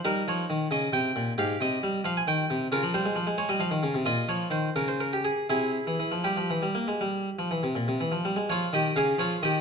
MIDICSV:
0, 0, Header, 1, 2, 480
1, 0, Start_track
1, 0, Tempo, 445765
1, 60, Time_signature, 12, 3, 24, 8
1, 4860, Tempo, 497100
1, 8700, Tempo, 465116
1, 9855, End_track
2, 0, Start_track
2, 0, Title_t, "Harpsichord"
2, 0, Program_c, 0, 6
2, 50, Note_on_c, 0, 63, 42
2, 51, Note_on_c, 0, 55, 66
2, 57, Note_on_c, 0, 70, 96
2, 227, Note_off_c, 0, 55, 0
2, 262, Note_off_c, 0, 70, 0
2, 300, Note_on_c, 0, 53, 60
2, 306, Note_on_c, 0, 73, 82
2, 471, Note_off_c, 0, 53, 0
2, 537, Note_on_c, 0, 51, 57
2, 707, Note_off_c, 0, 51, 0
2, 764, Note_on_c, 0, 49, 56
2, 773, Note_on_c, 0, 75, 80
2, 776, Note_off_c, 0, 73, 0
2, 940, Note_off_c, 0, 49, 0
2, 977, Note_off_c, 0, 75, 0
2, 998, Note_on_c, 0, 48, 65
2, 1004, Note_on_c, 0, 79, 93
2, 1177, Note_off_c, 0, 48, 0
2, 1248, Note_on_c, 0, 46, 58
2, 1417, Note_off_c, 0, 79, 0
2, 1423, Note_off_c, 0, 46, 0
2, 1446, Note_off_c, 0, 63, 0
2, 1487, Note_on_c, 0, 67, 37
2, 1488, Note_on_c, 0, 44, 65
2, 1497, Note_on_c, 0, 77, 103
2, 1662, Note_off_c, 0, 44, 0
2, 1698, Note_off_c, 0, 77, 0
2, 1731, Note_on_c, 0, 48, 53
2, 1740, Note_on_c, 0, 75, 82
2, 1903, Note_off_c, 0, 48, 0
2, 1974, Note_on_c, 0, 55, 53
2, 2145, Note_off_c, 0, 55, 0
2, 2201, Note_on_c, 0, 53, 64
2, 2213, Note_off_c, 0, 75, 0
2, 2213, Note_on_c, 0, 77, 95
2, 2330, Note_off_c, 0, 77, 0
2, 2339, Note_on_c, 0, 80, 70
2, 2375, Note_off_c, 0, 53, 0
2, 2449, Note_on_c, 0, 51, 59
2, 2453, Note_off_c, 0, 80, 0
2, 2455, Note_on_c, 0, 79, 86
2, 2621, Note_off_c, 0, 51, 0
2, 2695, Note_on_c, 0, 48, 56
2, 2858, Note_off_c, 0, 79, 0
2, 2865, Note_off_c, 0, 48, 0
2, 2879, Note_off_c, 0, 67, 0
2, 2927, Note_on_c, 0, 49, 59
2, 2931, Note_on_c, 0, 65, 40
2, 2936, Note_on_c, 0, 70, 95
2, 3040, Note_off_c, 0, 49, 0
2, 3046, Note_on_c, 0, 53, 55
2, 3135, Note_off_c, 0, 70, 0
2, 3159, Note_off_c, 0, 53, 0
2, 3166, Note_on_c, 0, 55, 53
2, 3170, Note_on_c, 0, 72, 67
2, 3278, Note_off_c, 0, 55, 0
2, 3289, Note_on_c, 0, 56, 54
2, 3398, Note_off_c, 0, 56, 0
2, 3398, Note_on_c, 0, 53, 55
2, 3512, Note_off_c, 0, 53, 0
2, 3520, Note_on_c, 0, 56, 54
2, 3625, Note_off_c, 0, 56, 0
2, 3638, Note_on_c, 0, 56, 51
2, 3640, Note_off_c, 0, 72, 0
2, 3642, Note_on_c, 0, 73, 82
2, 3751, Note_off_c, 0, 56, 0
2, 3757, Note_on_c, 0, 55, 49
2, 3758, Note_off_c, 0, 73, 0
2, 3760, Note_on_c, 0, 75, 64
2, 3870, Note_off_c, 0, 55, 0
2, 3872, Note_on_c, 0, 53, 54
2, 3877, Note_off_c, 0, 75, 0
2, 3881, Note_on_c, 0, 77, 82
2, 3988, Note_off_c, 0, 53, 0
2, 3995, Note_on_c, 0, 51, 51
2, 4110, Note_off_c, 0, 51, 0
2, 4124, Note_on_c, 0, 49, 46
2, 4235, Note_off_c, 0, 49, 0
2, 4248, Note_on_c, 0, 48, 48
2, 4319, Note_off_c, 0, 65, 0
2, 4359, Note_off_c, 0, 48, 0
2, 4362, Note_off_c, 0, 77, 0
2, 4366, Note_on_c, 0, 65, 35
2, 4367, Note_on_c, 0, 46, 56
2, 4373, Note_on_c, 0, 75, 91
2, 4542, Note_off_c, 0, 46, 0
2, 4614, Note_off_c, 0, 75, 0
2, 4615, Note_on_c, 0, 53, 44
2, 4618, Note_on_c, 0, 73, 69
2, 4793, Note_off_c, 0, 53, 0
2, 4851, Note_on_c, 0, 51, 48
2, 4859, Note_on_c, 0, 72, 67
2, 4864, Note_off_c, 0, 73, 0
2, 5019, Note_off_c, 0, 51, 0
2, 5054, Note_off_c, 0, 72, 0
2, 5097, Note_on_c, 0, 49, 51
2, 5097, Note_on_c, 0, 70, 72
2, 5209, Note_off_c, 0, 70, 0
2, 5216, Note_on_c, 0, 72, 49
2, 5328, Note_off_c, 0, 72, 0
2, 5334, Note_on_c, 0, 70, 52
2, 5447, Note_off_c, 0, 70, 0
2, 5458, Note_on_c, 0, 67, 47
2, 5567, Note_on_c, 0, 68, 65
2, 5570, Note_off_c, 0, 67, 0
2, 5610, Note_off_c, 0, 49, 0
2, 5769, Note_off_c, 0, 65, 0
2, 5772, Note_off_c, 0, 68, 0
2, 5808, Note_on_c, 0, 64, 30
2, 5811, Note_on_c, 0, 48, 47
2, 5815, Note_on_c, 0, 68, 74
2, 6071, Note_off_c, 0, 48, 0
2, 6171, Note_on_c, 0, 52, 41
2, 6280, Note_off_c, 0, 52, 0
2, 6292, Note_on_c, 0, 52, 44
2, 6407, Note_off_c, 0, 52, 0
2, 6408, Note_on_c, 0, 53, 43
2, 6527, Note_off_c, 0, 53, 0
2, 6527, Note_on_c, 0, 55, 40
2, 6531, Note_on_c, 0, 67, 52
2, 6540, Note_off_c, 0, 68, 0
2, 6649, Note_off_c, 0, 55, 0
2, 6652, Note_on_c, 0, 53, 42
2, 6773, Note_off_c, 0, 53, 0
2, 6779, Note_on_c, 0, 52, 43
2, 6898, Note_off_c, 0, 52, 0
2, 6898, Note_on_c, 0, 55, 43
2, 7017, Note_off_c, 0, 55, 0
2, 7017, Note_on_c, 0, 58, 43
2, 7137, Note_off_c, 0, 58, 0
2, 7143, Note_on_c, 0, 56, 45
2, 7260, Note_off_c, 0, 56, 0
2, 7270, Note_on_c, 0, 55, 44
2, 7530, Note_off_c, 0, 55, 0
2, 7634, Note_on_c, 0, 53, 40
2, 7746, Note_off_c, 0, 53, 0
2, 7754, Note_on_c, 0, 52, 37
2, 7865, Note_off_c, 0, 52, 0
2, 7872, Note_on_c, 0, 48, 42
2, 7983, Note_off_c, 0, 48, 0
2, 7988, Note_on_c, 0, 46, 42
2, 8100, Note_off_c, 0, 46, 0
2, 8112, Note_on_c, 0, 48, 38
2, 8222, Note_off_c, 0, 48, 0
2, 8231, Note_on_c, 0, 52, 42
2, 8339, Note_on_c, 0, 53, 36
2, 8342, Note_off_c, 0, 52, 0
2, 8456, Note_off_c, 0, 53, 0
2, 8462, Note_off_c, 0, 67, 0
2, 8468, Note_on_c, 0, 55, 46
2, 8577, Note_on_c, 0, 56, 43
2, 8580, Note_off_c, 0, 55, 0
2, 8663, Note_off_c, 0, 64, 0
2, 8691, Note_off_c, 0, 56, 0
2, 8704, Note_on_c, 0, 53, 58
2, 8708, Note_on_c, 0, 73, 94
2, 8726, Note_on_c, 0, 65, 64
2, 8880, Note_off_c, 0, 53, 0
2, 8943, Note_off_c, 0, 65, 0
2, 8947, Note_on_c, 0, 51, 54
2, 8950, Note_off_c, 0, 73, 0
2, 8955, Note_on_c, 0, 75, 85
2, 8965, Note_on_c, 0, 67, 60
2, 9122, Note_off_c, 0, 51, 0
2, 9183, Note_off_c, 0, 67, 0
2, 9185, Note_on_c, 0, 49, 57
2, 9189, Note_on_c, 0, 77, 81
2, 9195, Note_off_c, 0, 75, 0
2, 9202, Note_on_c, 0, 68, 65
2, 9359, Note_off_c, 0, 49, 0
2, 9392, Note_off_c, 0, 77, 0
2, 9416, Note_on_c, 0, 53, 52
2, 9419, Note_off_c, 0, 68, 0
2, 9427, Note_on_c, 0, 73, 85
2, 9437, Note_on_c, 0, 65, 67
2, 9590, Note_off_c, 0, 53, 0
2, 9651, Note_off_c, 0, 65, 0
2, 9663, Note_off_c, 0, 73, 0
2, 9667, Note_on_c, 0, 51, 58
2, 9669, Note_on_c, 0, 75, 92
2, 9688, Note_on_c, 0, 67, 70
2, 9835, Note_off_c, 0, 51, 0
2, 9855, Note_off_c, 0, 67, 0
2, 9855, Note_off_c, 0, 75, 0
2, 9855, End_track
0, 0, End_of_file